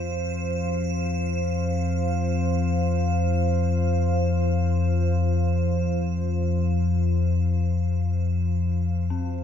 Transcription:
Already playing: F2 F3 F4 C5 F5
9.10 F2 F3 C4

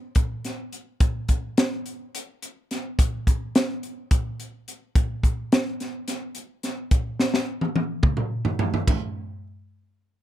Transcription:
0.15 kick, closed hi-hat
0.44 snare, closed hi-hat
0.73 closed hi-hat
1.00 kick, closed hi-hat
1.29 kick, closed hi-hat
1.58 snare, closed hi-hat
1.86 closed hi-hat
2.15 closed hi-hat
2.42 closed hi-hat
2.71 snare, closed hi-hat
2.99 kick, closed hi-hat
3.27 kick, closed hi-hat
3.55 snare, closed hi-hat
3.83 closed hi-hat
4.11 kick, closed hi-hat
4.40 closed hi-hat
4.68 closed hi-hat
4.95 kick, closed hi-hat
5.23 kick, closed hi-hat
5.52 snare, closed hi-hat
5.80 snare, closed hi-hat
6.08 snare, closed hi-hat
6.35 closed hi-hat
6.63 snare, closed hi-hat
6.91 kick, closed hi-hat
7.19 snare
7.34 snare
7.61 high tom
7.76 high tom
8.03 kick, mid tom
8.17 mid tom
8.45 floor tom
8.59 floor tom
8.74 floor tom
8.87 kick, floor tom, ride bell

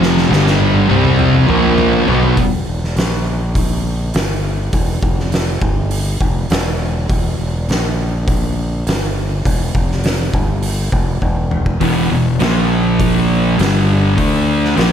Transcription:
Already playing: F1 F2 C3 F3
0.03 snare
0.17 snare
0.29 G1 G2 D3 G3, snare
0.47 snare
0.60 high tom
0.74 high tom
0.89 C2 C3 G3 C4, high tom
1.05 mid tom
1.19 mid tom
1.34 mid tom
1.48 A#1 A#2 F3 A#3, mid tom
1.63 mid tom
1.78 mid tom
1.93 floor tom
2.08 B1 B2 F#3 B3, floor tom
2.23 floor tom
2.37 E1, kick, open hi-hat
2.67 E1
2.84 snare
2.96 A#1, snare, open hi-hat
3.55 kick, open hi-hat
4.14 G1, snare, open hi-hat
4.73 E1, kick, open hi-hat
5.02 F1, kick
5.20 snare
5.32 snare, open hi-hat
5.62 G1, kick
5.91 open hi-hat
6.21 F1, kick
6.50 E1, snare, open hi-hat
7.09 E1, kick, open hi-hat
7.39 E1
7.68 A#1, snare, open hi-hat
8.28 kick, open hi-hat
8.87 G1, snare, open hi-hat
9.45 E1, kick, open hi-hat
9.75 F1, kick
9.92 snare
10.04 snare, open hi-hat
10.34 G1, kick
10.62 open hi-hat
10.92 F1, kick
11.22 E1, kick
11.51 mid tom
11.66 kick
11.81 E1 E2 B2 E3, kick, open hi-hat
12.10 E1 E2 B2
12.40 A#1 A#2 F3 A#3, snare, open hi-hat
13.00 kick, open hi-hat
13.57 G1 G2 D3 G3, snare, open hi-hat
14.16 D2 D3 A3 D4, kick, open hi-hat
14.65 snare
14.76 A#1 A#2 F3 A#3, snare, open hi-hat

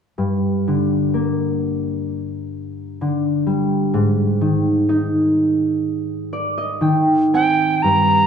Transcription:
0.18 G2
0.68 D3
1.14 A#3
3.01 D3
3.47 G3
3.94 G#2
4.41 D#3
4.89 D#4
6.33 D5
6.58 D#5
6.81 D#3 G5
7.34 C4 G5 G#5
7.82 G2 A#5

